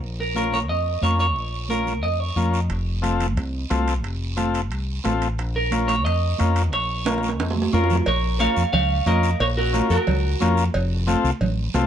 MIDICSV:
0, 0, Header, 1, 5, 480
1, 0, Start_track
1, 0, Key_signature, -5, "minor"
1, 0, Tempo, 334448
1, 46, Time_signature, 4, 2, 24, 8
1, 17030, End_track
2, 0, Start_track
2, 0, Title_t, "Clean electric guitar"
2, 0, Program_c, 0, 27
2, 292, Note_on_c, 0, 70, 78
2, 509, Note_off_c, 0, 70, 0
2, 526, Note_on_c, 0, 70, 82
2, 770, Note_on_c, 0, 73, 89
2, 773, Note_off_c, 0, 70, 0
2, 842, Note_off_c, 0, 73, 0
2, 995, Note_on_c, 0, 75, 96
2, 1445, Note_off_c, 0, 75, 0
2, 1478, Note_on_c, 0, 73, 77
2, 1704, Note_off_c, 0, 73, 0
2, 1723, Note_on_c, 0, 73, 84
2, 2392, Note_off_c, 0, 73, 0
2, 2439, Note_on_c, 0, 70, 77
2, 2910, Note_on_c, 0, 75, 91
2, 2935, Note_off_c, 0, 70, 0
2, 3157, Note_off_c, 0, 75, 0
2, 3157, Note_on_c, 0, 73, 79
2, 3640, Note_off_c, 0, 73, 0
2, 7978, Note_on_c, 0, 70, 86
2, 8421, Note_off_c, 0, 70, 0
2, 8439, Note_on_c, 0, 73, 95
2, 8668, Note_off_c, 0, 73, 0
2, 8681, Note_on_c, 0, 75, 96
2, 9356, Note_off_c, 0, 75, 0
2, 9667, Note_on_c, 0, 73, 94
2, 11044, Note_off_c, 0, 73, 0
2, 11093, Note_on_c, 0, 65, 56
2, 11115, Note_on_c, 0, 70, 69
2, 11540, Note_off_c, 0, 65, 0
2, 11552, Note_off_c, 0, 70, 0
2, 11575, Note_on_c, 0, 70, 84
2, 11595, Note_on_c, 0, 73, 93
2, 12021, Note_off_c, 0, 70, 0
2, 12032, Note_off_c, 0, 73, 0
2, 12051, Note_on_c, 0, 73, 87
2, 12061, Note_on_c, 0, 77, 91
2, 12500, Note_off_c, 0, 73, 0
2, 12502, Note_off_c, 0, 77, 0
2, 12529, Note_on_c, 0, 77, 107
2, 12538, Note_on_c, 0, 73, 79
2, 12983, Note_off_c, 0, 73, 0
2, 13022, Note_on_c, 0, 70, 68
2, 13025, Note_off_c, 0, 77, 0
2, 13030, Note_on_c, 0, 75, 69
2, 13465, Note_off_c, 0, 70, 0
2, 13497, Note_off_c, 0, 75, 0
2, 13503, Note_on_c, 0, 73, 99
2, 13510, Note_on_c, 0, 70, 77
2, 13574, Note_off_c, 0, 73, 0
2, 13582, Note_off_c, 0, 70, 0
2, 13739, Note_on_c, 0, 66, 73
2, 13744, Note_on_c, 0, 70, 87
2, 14183, Note_off_c, 0, 66, 0
2, 14202, Note_off_c, 0, 70, 0
2, 14220, Note_on_c, 0, 70, 87
2, 14229, Note_on_c, 0, 66, 68
2, 15117, Note_off_c, 0, 70, 0
2, 15122, Note_off_c, 0, 66, 0
2, 17030, End_track
3, 0, Start_track
3, 0, Title_t, "Transistor combo organ"
3, 0, Program_c, 1, 18
3, 515, Note_on_c, 1, 65, 53
3, 519, Note_on_c, 1, 61, 65
3, 525, Note_on_c, 1, 70, 69
3, 856, Note_off_c, 1, 65, 0
3, 858, Note_off_c, 1, 61, 0
3, 861, Note_off_c, 1, 70, 0
3, 1472, Note_on_c, 1, 61, 64
3, 1479, Note_on_c, 1, 65, 62
3, 1491, Note_on_c, 1, 70, 66
3, 1814, Note_off_c, 1, 61, 0
3, 1817, Note_off_c, 1, 65, 0
3, 1823, Note_off_c, 1, 70, 0
3, 2438, Note_on_c, 1, 61, 60
3, 2442, Note_on_c, 1, 65, 55
3, 2444, Note_on_c, 1, 70, 61
3, 2776, Note_off_c, 1, 61, 0
3, 2778, Note_off_c, 1, 65, 0
3, 2779, Note_off_c, 1, 70, 0
3, 3390, Note_on_c, 1, 61, 59
3, 3395, Note_on_c, 1, 65, 60
3, 3404, Note_on_c, 1, 70, 71
3, 3733, Note_off_c, 1, 61, 0
3, 3735, Note_off_c, 1, 65, 0
3, 3740, Note_off_c, 1, 70, 0
3, 4335, Note_on_c, 1, 60, 67
3, 4340, Note_on_c, 1, 65, 72
3, 4343, Note_on_c, 1, 69, 85
3, 4686, Note_off_c, 1, 60, 0
3, 4688, Note_off_c, 1, 65, 0
3, 4690, Note_off_c, 1, 69, 0
3, 5310, Note_on_c, 1, 60, 75
3, 5313, Note_on_c, 1, 65, 74
3, 5321, Note_on_c, 1, 69, 82
3, 5654, Note_off_c, 1, 60, 0
3, 5655, Note_off_c, 1, 65, 0
3, 5659, Note_off_c, 1, 69, 0
3, 6266, Note_on_c, 1, 60, 74
3, 6273, Note_on_c, 1, 65, 67
3, 6280, Note_on_c, 1, 69, 85
3, 6612, Note_off_c, 1, 60, 0
3, 6616, Note_off_c, 1, 65, 0
3, 6619, Note_off_c, 1, 69, 0
3, 7235, Note_on_c, 1, 60, 74
3, 7244, Note_on_c, 1, 65, 77
3, 7247, Note_on_c, 1, 69, 85
3, 7578, Note_off_c, 1, 60, 0
3, 7582, Note_off_c, 1, 65, 0
3, 7584, Note_off_c, 1, 69, 0
3, 8204, Note_on_c, 1, 61, 69
3, 8212, Note_on_c, 1, 65, 60
3, 8220, Note_on_c, 1, 70, 69
3, 8543, Note_off_c, 1, 61, 0
3, 8547, Note_off_c, 1, 65, 0
3, 8551, Note_off_c, 1, 70, 0
3, 9169, Note_on_c, 1, 61, 67
3, 9175, Note_on_c, 1, 65, 66
3, 9183, Note_on_c, 1, 70, 81
3, 9507, Note_off_c, 1, 61, 0
3, 9510, Note_off_c, 1, 65, 0
3, 9514, Note_off_c, 1, 70, 0
3, 10139, Note_on_c, 1, 61, 63
3, 10140, Note_on_c, 1, 65, 59
3, 10149, Note_on_c, 1, 70, 72
3, 10472, Note_off_c, 1, 61, 0
3, 10473, Note_off_c, 1, 65, 0
3, 10478, Note_off_c, 1, 70, 0
3, 11096, Note_on_c, 1, 61, 83
3, 11101, Note_on_c, 1, 65, 73
3, 11112, Note_on_c, 1, 70, 92
3, 11432, Note_off_c, 1, 61, 0
3, 11434, Note_off_c, 1, 65, 0
3, 11440, Note_off_c, 1, 70, 0
3, 12053, Note_on_c, 1, 61, 68
3, 12059, Note_on_c, 1, 65, 59
3, 12061, Note_on_c, 1, 70, 68
3, 12390, Note_off_c, 1, 61, 0
3, 12393, Note_off_c, 1, 65, 0
3, 12394, Note_off_c, 1, 70, 0
3, 13006, Note_on_c, 1, 61, 73
3, 13018, Note_on_c, 1, 70, 82
3, 13019, Note_on_c, 1, 65, 65
3, 13346, Note_off_c, 1, 61, 0
3, 13352, Note_off_c, 1, 65, 0
3, 13352, Note_off_c, 1, 70, 0
3, 13966, Note_on_c, 1, 61, 64
3, 13976, Note_on_c, 1, 65, 63
3, 13979, Note_on_c, 1, 70, 78
3, 14305, Note_off_c, 1, 61, 0
3, 14310, Note_off_c, 1, 65, 0
3, 14311, Note_off_c, 1, 70, 0
3, 14936, Note_on_c, 1, 61, 82
3, 14944, Note_on_c, 1, 65, 80
3, 14949, Note_on_c, 1, 70, 97
3, 15269, Note_off_c, 1, 61, 0
3, 15273, Note_off_c, 1, 65, 0
3, 15275, Note_off_c, 1, 70, 0
3, 15887, Note_on_c, 1, 60, 86
3, 15899, Note_on_c, 1, 65, 78
3, 15903, Note_on_c, 1, 69, 99
3, 16223, Note_off_c, 1, 60, 0
3, 16229, Note_off_c, 1, 65, 0
3, 16231, Note_off_c, 1, 69, 0
3, 16857, Note_on_c, 1, 65, 76
3, 16862, Note_on_c, 1, 60, 85
3, 16867, Note_on_c, 1, 69, 94
3, 17030, Note_off_c, 1, 60, 0
3, 17030, Note_off_c, 1, 65, 0
3, 17030, Note_off_c, 1, 69, 0
3, 17030, End_track
4, 0, Start_track
4, 0, Title_t, "Fingered electric bass"
4, 0, Program_c, 2, 33
4, 44, Note_on_c, 2, 34, 99
4, 993, Note_off_c, 2, 34, 0
4, 993, Note_on_c, 2, 41, 77
4, 1381, Note_off_c, 2, 41, 0
4, 1467, Note_on_c, 2, 41, 73
4, 1952, Note_off_c, 2, 41, 0
4, 1952, Note_on_c, 2, 34, 99
4, 2915, Note_off_c, 2, 34, 0
4, 2915, Note_on_c, 2, 41, 73
4, 3302, Note_off_c, 2, 41, 0
4, 3386, Note_on_c, 2, 41, 76
4, 3870, Note_on_c, 2, 29, 96
4, 3891, Note_off_c, 2, 41, 0
4, 4839, Note_off_c, 2, 29, 0
4, 4839, Note_on_c, 2, 36, 83
4, 5225, Note_off_c, 2, 36, 0
4, 5321, Note_on_c, 2, 36, 83
4, 5810, Note_off_c, 2, 36, 0
4, 5810, Note_on_c, 2, 29, 91
4, 6776, Note_off_c, 2, 29, 0
4, 6776, Note_on_c, 2, 36, 80
4, 7156, Note_off_c, 2, 36, 0
4, 7255, Note_on_c, 2, 33, 79
4, 7728, Note_off_c, 2, 33, 0
4, 7728, Note_on_c, 2, 34, 94
4, 8697, Note_off_c, 2, 34, 0
4, 8697, Note_on_c, 2, 41, 77
4, 9079, Note_off_c, 2, 41, 0
4, 9190, Note_on_c, 2, 41, 79
4, 9662, Note_off_c, 2, 41, 0
4, 9662, Note_on_c, 2, 34, 102
4, 10626, Note_off_c, 2, 34, 0
4, 10626, Note_on_c, 2, 41, 90
4, 11005, Note_off_c, 2, 41, 0
4, 11100, Note_on_c, 2, 41, 88
4, 11482, Note_off_c, 2, 41, 0
4, 11577, Note_on_c, 2, 34, 98
4, 12152, Note_off_c, 2, 34, 0
4, 12296, Note_on_c, 2, 41, 75
4, 12392, Note_off_c, 2, 41, 0
4, 12530, Note_on_c, 2, 37, 90
4, 12916, Note_off_c, 2, 37, 0
4, 13006, Note_on_c, 2, 41, 95
4, 13393, Note_off_c, 2, 41, 0
4, 13493, Note_on_c, 2, 34, 95
4, 14069, Note_off_c, 2, 34, 0
4, 14208, Note_on_c, 2, 41, 83
4, 14306, Note_off_c, 2, 41, 0
4, 14463, Note_on_c, 2, 37, 86
4, 14842, Note_off_c, 2, 37, 0
4, 14953, Note_on_c, 2, 41, 90
4, 15328, Note_off_c, 2, 41, 0
4, 15422, Note_on_c, 2, 29, 104
4, 15992, Note_off_c, 2, 29, 0
4, 16133, Note_on_c, 2, 36, 90
4, 16227, Note_off_c, 2, 36, 0
4, 16371, Note_on_c, 2, 33, 95
4, 16753, Note_off_c, 2, 33, 0
4, 16852, Note_on_c, 2, 36, 91
4, 17030, Note_off_c, 2, 36, 0
4, 17030, End_track
5, 0, Start_track
5, 0, Title_t, "Drums"
5, 55, Note_on_c, 9, 74, 60
5, 198, Note_off_c, 9, 74, 0
5, 500, Note_on_c, 9, 63, 77
5, 522, Note_on_c, 9, 73, 67
5, 643, Note_off_c, 9, 63, 0
5, 666, Note_off_c, 9, 73, 0
5, 752, Note_on_c, 9, 63, 67
5, 766, Note_on_c, 9, 73, 60
5, 895, Note_off_c, 9, 63, 0
5, 909, Note_off_c, 9, 73, 0
5, 1007, Note_on_c, 9, 74, 65
5, 1151, Note_off_c, 9, 74, 0
5, 1457, Note_on_c, 9, 63, 72
5, 1482, Note_on_c, 9, 73, 62
5, 1601, Note_off_c, 9, 63, 0
5, 1626, Note_off_c, 9, 73, 0
5, 1713, Note_on_c, 9, 73, 62
5, 1857, Note_off_c, 9, 73, 0
5, 1952, Note_on_c, 9, 74, 60
5, 2096, Note_off_c, 9, 74, 0
5, 2422, Note_on_c, 9, 63, 73
5, 2446, Note_on_c, 9, 73, 65
5, 2566, Note_off_c, 9, 63, 0
5, 2590, Note_off_c, 9, 73, 0
5, 2666, Note_on_c, 9, 63, 65
5, 2686, Note_on_c, 9, 73, 59
5, 2810, Note_off_c, 9, 63, 0
5, 2829, Note_off_c, 9, 73, 0
5, 2928, Note_on_c, 9, 74, 65
5, 3072, Note_off_c, 9, 74, 0
5, 3396, Note_on_c, 9, 63, 66
5, 3405, Note_on_c, 9, 73, 62
5, 3539, Note_off_c, 9, 63, 0
5, 3549, Note_off_c, 9, 73, 0
5, 3638, Note_on_c, 9, 73, 62
5, 3782, Note_off_c, 9, 73, 0
5, 3872, Note_on_c, 9, 65, 63
5, 3884, Note_on_c, 9, 74, 57
5, 4016, Note_off_c, 9, 65, 0
5, 4028, Note_off_c, 9, 74, 0
5, 4355, Note_on_c, 9, 63, 75
5, 4359, Note_on_c, 9, 65, 67
5, 4363, Note_on_c, 9, 73, 68
5, 4499, Note_off_c, 9, 63, 0
5, 4503, Note_off_c, 9, 65, 0
5, 4506, Note_off_c, 9, 73, 0
5, 4598, Note_on_c, 9, 73, 61
5, 4599, Note_on_c, 9, 65, 64
5, 4603, Note_on_c, 9, 63, 62
5, 4741, Note_off_c, 9, 73, 0
5, 4743, Note_off_c, 9, 65, 0
5, 4746, Note_off_c, 9, 63, 0
5, 4835, Note_on_c, 9, 74, 68
5, 4842, Note_on_c, 9, 65, 61
5, 4979, Note_off_c, 9, 74, 0
5, 4985, Note_off_c, 9, 65, 0
5, 5319, Note_on_c, 9, 73, 56
5, 5320, Note_on_c, 9, 63, 72
5, 5323, Note_on_c, 9, 65, 71
5, 5323, Note_on_c, 9, 66, 65
5, 5463, Note_off_c, 9, 73, 0
5, 5464, Note_off_c, 9, 63, 0
5, 5467, Note_off_c, 9, 65, 0
5, 5467, Note_off_c, 9, 66, 0
5, 5561, Note_on_c, 9, 73, 63
5, 5564, Note_on_c, 9, 65, 58
5, 5705, Note_off_c, 9, 73, 0
5, 5708, Note_off_c, 9, 65, 0
5, 5800, Note_on_c, 9, 65, 67
5, 5802, Note_on_c, 9, 74, 60
5, 5944, Note_off_c, 9, 65, 0
5, 5945, Note_off_c, 9, 74, 0
5, 6273, Note_on_c, 9, 63, 80
5, 6275, Note_on_c, 9, 73, 66
5, 6280, Note_on_c, 9, 65, 63
5, 6417, Note_off_c, 9, 63, 0
5, 6418, Note_off_c, 9, 73, 0
5, 6423, Note_off_c, 9, 65, 0
5, 6521, Note_on_c, 9, 73, 56
5, 6530, Note_on_c, 9, 65, 63
5, 6664, Note_off_c, 9, 73, 0
5, 6674, Note_off_c, 9, 65, 0
5, 6755, Note_on_c, 9, 74, 65
5, 6769, Note_on_c, 9, 65, 63
5, 6899, Note_off_c, 9, 74, 0
5, 6913, Note_off_c, 9, 65, 0
5, 7238, Note_on_c, 9, 63, 72
5, 7242, Note_on_c, 9, 73, 60
5, 7250, Note_on_c, 9, 65, 67
5, 7250, Note_on_c, 9, 66, 71
5, 7381, Note_off_c, 9, 63, 0
5, 7386, Note_off_c, 9, 73, 0
5, 7393, Note_off_c, 9, 65, 0
5, 7393, Note_off_c, 9, 66, 0
5, 7489, Note_on_c, 9, 65, 63
5, 7490, Note_on_c, 9, 73, 60
5, 7633, Note_off_c, 9, 65, 0
5, 7634, Note_off_c, 9, 73, 0
5, 7726, Note_on_c, 9, 74, 57
5, 7736, Note_on_c, 9, 65, 69
5, 7870, Note_off_c, 9, 74, 0
5, 7879, Note_off_c, 9, 65, 0
5, 8198, Note_on_c, 9, 63, 81
5, 8207, Note_on_c, 9, 73, 69
5, 8210, Note_on_c, 9, 65, 68
5, 8342, Note_off_c, 9, 63, 0
5, 8350, Note_off_c, 9, 73, 0
5, 8354, Note_off_c, 9, 65, 0
5, 8440, Note_on_c, 9, 63, 69
5, 8445, Note_on_c, 9, 73, 65
5, 8455, Note_on_c, 9, 65, 66
5, 8583, Note_off_c, 9, 63, 0
5, 8589, Note_off_c, 9, 73, 0
5, 8598, Note_off_c, 9, 65, 0
5, 8688, Note_on_c, 9, 74, 66
5, 8701, Note_on_c, 9, 65, 70
5, 8831, Note_off_c, 9, 74, 0
5, 8845, Note_off_c, 9, 65, 0
5, 9162, Note_on_c, 9, 63, 76
5, 9179, Note_on_c, 9, 65, 69
5, 9181, Note_on_c, 9, 73, 66
5, 9305, Note_off_c, 9, 63, 0
5, 9322, Note_off_c, 9, 65, 0
5, 9324, Note_off_c, 9, 73, 0
5, 9414, Note_on_c, 9, 65, 67
5, 9423, Note_on_c, 9, 73, 67
5, 9558, Note_off_c, 9, 65, 0
5, 9566, Note_off_c, 9, 73, 0
5, 9656, Note_on_c, 9, 74, 59
5, 9657, Note_on_c, 9, 65, 64
5, 9799, Note_off_c, 9, 74, 0
5, 9801, Note_off_c, 9, 65, 0
5, 10121, Note_on_c, 9, 63, 81
5, 10135, Note_on_c, 9, 65, 90
5, 10140, Note_on_c, 9, 73, 67
5, 10264, Note_off_c, 9, 63, 0
5, 10279, Note_off_c, 9, 65, 0
5, 10284, Note_off_c, 9, 73, 0
5, 10304, Note_on_c, 9, 65, 70
5, 10363, Note_on_c, 9, 63, 60
5, 10374, Note_on_c, 9, 73, 63
5, 10448, Note_off_c, 9, 65, 0
5, 10461, Note_on_c, 9, 65, 73
5, 10507, Note_off_c, 9, 63, 0
5, 10517, Note_off_c, 9, 73, 0
5, 10605, Note_off_c, 9, 65, 0
5, 10615, Note_on_c, 9, 74, 65
5, 10619, Note_on_c, 9, 65, 88
5, 10758, Note_off_c, 9, 74, 0
5, 10762, Note_off_c, 9, 65, 0
5, 10772, Note_on_c, 9, 66, 99
5, 10857, Note_on_c, 9, 63, 100
5, 10916, Note_off_c, 9, 66, 0
5, 10934, Note_on_c, 9, 66, 100
5, 11000, Note_off_c, 9, 63, 0
5, 11077, Note_off_c, 9, 66, 0
5, 11090, Note_on_c, 9, 63, 79
5, 11096, Note_on_c, 9, 66, 69
5, 11098, Note_on_c, 9, 73, 63
5, 11234, Note_off_c, 9, 63, 0
5, 11239, Note_off_c, 9, 66, 0
5, 11241, Note_off_c, 9, 73, 0
5, 11248, Note_on_c, 9, 66, 81
5, 11337, Note_on_c, 9, 73, 62
5, 11344, Note_on_c, 9, 64, 73
5, 11392, Note_off_c, 9, 66, 0
5, 11411, Note_on_c, 9, 66, 76
5, 11480, Note_off_c, 9, 73, 0
5, 11487, Note_off_c, 9, 64, 0
5, 11554, Note_off_c, 9, 66, 0
5, 11568, Note_on_c, 9, 63, 33
5, 11568, Note_on_c, 9, 74, 66
5, 11570, Note_on_c, 9, 56, 111
5, 11712, Note_off_c, 9, 63, 0
5, 11712, Note_off_c, 9, 74, 0
5, 11714, Note_off_c, 9, 56, 0
5, 12046, Note_on_c, 9, 73, 69
5, 12055, Note_on_c, 9, 56, 72
5, 12058, Note_on_c, 9, 63, 86
5, 12190, Note_off_c, 9, 73, 0
5, 12198, Note_off_c, 9, 56, 0
5, 12201, Note_off_c, 9, 63, 0
5, 12292, Note_on_c, 9, 73, 72
5, 12436, Note_off_c, 9, 73, 0
5, 12525, Note_on_c, 9, 74, 71
5, 12531, Note_on_c, 9, 63, 35
5, 12531, Note_on_c, 9, 64, 87
5, 12538, Note_on_c, 9, 56, 84
5, 12669, Note_off_c, 9, 74, 0
5, 12675, Note_off_c, 9, 63, 0
5, 12675, Note_off_c, 9, 64, 0
5, 12682, Note_off_c, 9, 56, 0
5, 13003, Note_on_c, 9, 63, 84
5, 13008, Note_on_c, 9, 73, 62
5, 13012, Note_on_c, 9, 56, 74
5, 13146, Note_off_c, 9, 63, 0
5, 13152, Note_off_c, 9, 73, 0
5, 13156, Note_off_c, 9, 56, 0
5, 13251, Note_on_c, 9, 73, 67
5, 13395, Note_off_c, 9, 73, 0
5, 13494, Note_on_c, 9, 56, 116
5, 13494, Note_on_c, 9, 63, 38
5, 13503, Note_on_c, 9, 74, 65
5, 13638, Note_off_c, 9, 56, 0
5, 13638, Note_off_c, 9, 63, 0
5, 13646, Note_off_c, 9, 74, 0
5, 13980, Note_on_c, 9, 73, 77
5, 13982, Note_on_c, 9, 63, 86
5, 13984, Note_on_c, 9, 56, 69
5, 14124, Note_off_c, 9, 73, 0
5, 14125, Note_off_c, 9, 63, 0
5, 14128, Note_off_c, 9, 56, 0
5, 14211, Note_on_c, 9, 73, 68
5, 14354, Note_off_c, 9, 73, 0
5, 14453, Note_on_c, 9, 63, 39
5, 14453, Note_on_c, 9, 64, 86
5, 14454, Note_on_c, 9, 74, 73
5, 14458, Note_on_c, 9, 56, 89
5, 14597, Note_off_c, 9, 63, 0
5, 14597, Note_off_c, 9, 64, 0
5, 14597, Note_off_c, 9, 74, 0
5, 14601, Note_off_c, 9, 56, 0
5, 14935, Note_on_c, 9, 63, 86
5, 14936, Note_on_c, 9, 73, 68
5, 14952, Note_on_c, 9, 56, 79
5, 15078, Note_off_c, 9, 63, 0
5, 15079, Note_off_c, 9, 73, 0
5, 15095, Note_off_c, 9, 56, 0
5, 15174, Note_on_c, 9, 73, 72
5, 15317, Note_off_c, 9, 73, 0
5, 15415, Note_on_c, 9, 63, 37
5, 15416, Note_on_c, 9, 56, 115
5, 15425, Note_on_c, 9, 74, 64
5, 15559, Note_off_c, 9, 56, 0
5, 15559, Note_off_c, 9, 63, 0
5, 15568, Note_off_c, 9, 74, 0
5, 15891, Note_on_c, 9, 63, 83
5, 15894, Note_on_c, 9, 56, 69
5, 15903, Note_on_c, 9, 73, 76
5, 16034, Note_off_c, 9, 63, 0
5, 16038, Note_off_c, 9, 56, 0
5, 16047, Note_off_c, 9, 73, 0
5, 16145, Note_on_c, 9, 73, 65
5, 16288, Note_off_c, 9, 73, 0
5, 16374, Note_on_c, 9, 56, 85
5, 16383, Note_on_c, 9, 74, 77
5, 16384, Note_on_c, 9, 63, 37
5, 16384, Note_on_c, 9, 64, 86
5, 16517, Note_off_c, 9, 56, 0
5, 16527, Note_off_c, 9, 63, 0
5, 16527, Note_off_c, 9, 64, 0
5, 16527, Note_off_c, 9, 74, 0
5, 16852, Note_on_c, 9, 63, 87
5, 16852, Note_on_c, 9, 73, 65
5, 16854, Note_on_c, 9, 56, 75
5, 16854, Note_on_c, 9, 66, 82
5, 16995, Note_off_c, 9, 63, 0
5, 16995, Note_off_c, 9, 73, 0
5, 16997, Note_off_c, 9, 56, 0
5, 16997, Note_off_c, 9, 66, 0
5, 17030, End_track
0, 0, End_of_file